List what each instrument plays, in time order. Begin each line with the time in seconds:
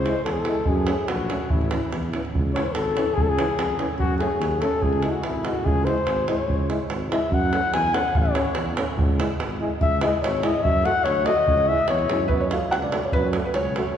Already playing: flugelhorn C5
0.05 trombone G#3, euphonium E4, davul high
0.15 davul high
0.24 tuba E2, flugelhorn A4, davul high
0.32 flugelhorn G#4
0.40 flugelhorn A4
0.45 trombone G#3, euphonium E4, davul high
0.66 tuba F#2, flugelhorn G#4, davul low
0.87 trombone A3, euphonium C#4, davul high
0.98 davul high
1.08 tuba A#1, flugelhorn F#4, davul high
1.30 trombone A3, euphonium C#4, davul high
1.50 tuba A1, flugelhorn E4, davul low
1.61 davul high
1.71 trombone E3, euphonium C#4, davul high
1.91 tuba E2, davul high
2.03 davul high
2.13 trombone E3, euphonium C#4, davul high
2.25 davul high
2.33 tuba C#2, davul low
2.53 trombone E3, euphonium C#4, flugelhorn C#5, davul high
2.66 flugelhorn C5, davul high
2.73 tuba G#1, flugelhorn A4, davul high
2.96 trombone E3, euphonium C#4, davul high
3.14 tuba C#2, flugelhorn G#4, davul low
3.22 flugelhorn A4
3.29 flugelhorn G#4
3.37 trombone E3, euphonium C#4, davul high
3.49 davul high
3.57 tuba F2, davul high
3.79 trombone E3, euphonium C#4, davul high
3.99 tuba F#2, flugelhorn F#4, davul low
4.19 trombone A3, euphonium C#4, flugelhorn G#4, davul high
4.32 davul high
4.40 tuba D#2, davul high
4.61 trombone A3, euphonium C#4, flugelhorn A4, davul high
4.82 tuba C#2, flugelhorn G#4, davul low
4.93 davul high
5.02 trombone G#3, euphonium E4, davul high
5.11 flugelhorn F#4
5.24 tuba G#1, flugelhorn E4, davul high
5.35 davul high
5.45 trombone G#3, euphonium E4, flugelhorn F#4, davul high
5.55 davul high
5.64 tuba C#2, flugelhorn G#4, davul low
5.85 trombone G#3, euphonium E4, flugelhorn C5, davul high
5.98 davul high
6.06 tuba G#1, davul high
6.27 trombone G#3, euphonium E4, flugelhorn C#5, davul high
6.47 tuba C#2, davul low
6.69 trombone G#3, euphonium E4, davul high
6.80 davul high
6.90 tuba G#1, davul high
7.10 trombone G#3, euphonium E4, flugelhorn E5, davul high
7.31 tuba F#2, flugelhorn F#5, davul low
7.53 trombone A3, euphonium C#4, davul high
7.63 davul high
7.73 tuba E2, flugelhorn G#5, davul high
7.94 trombone A3, euphonium C#4, flugelhorn F#5, davul high
8.14 tuba A1, flugelhorn C#5, davul low
8.26 davul high
8.34 trombone A3, euphonium C#4, davul high
8.45 davul high
8.55 tuba E2, davul high
8.66 davul high
8.77 trombone A3, euphonium C#4, davul high
8.97 tuba C#2, davul low
9.19 trombone G#3, euphonium E4, davul high
9.31 davul high
9.39 tuba G#1, davul high
9.60 trombone G#3, euphonium E4
9.80 tuba C#2, flugelhorn E5, davul low
10.01 trombone G#3, euphonium E4, flugelhorn D#5, davul high
10.13 davul high
10.22 tuba G#1, flugelhorn C#5, davul high
10.42 trombone G#3, euphonium E4, flugelhorn D#5, davul high
10.62 tuba F#2, flugelhorn E5, davul low
10.85 trombone A3, euphonium F#4, flugelhorn F#5, davul high
10.96 davul high
11.04 tuba D2, flugelhorn C#5, davul high
11.25 trombone A3, euphonium F#4, flugelhorn D#5, davul high
11.47 tuba C#2, davul low
11.57 davul high
11.68 trombone G#3, euphonium E4, flugelhorn E5
11.78 davul high
11.88 tuba E2, flugelhorn C#5, davul high
11.99 davul high
12.09 tuba F#2, trombone G#3, euphonium E4, davul high
12.28 tuba F#2, felt piano B4, davul low
12.33 flugelhorn B3
12.40 flugelhorn C#4, felt piano C#5
12.51 trombone A3, flugelhorn F4, euphonium F#4, felt piano F5, davul high
12.71 tuba C#2, flugelhorn F#4, felt piano F#5, davul high
12.82 flugelhorn D4, felt piano D5, davul high
12.92 trombone A3, euphonium F#4, davul high
13.03 flugelhorn C#4, felt piano C#5, davul high
13.12 tuba F#2, flugelhorn B3, felt piano B4, davul low
13.22 flugelhorn C#4, felt piano C#5
13.33 trombone A3, euphonium F#4, davul high
13.43 flugelhorn B3, felt piano B4
13.53 tuba C#2, flugelhorn C#4, felt piano C#5, davul high
13.65 davul high
13.76 trombone A3, euphonium F#4, davul high
13.87 davul high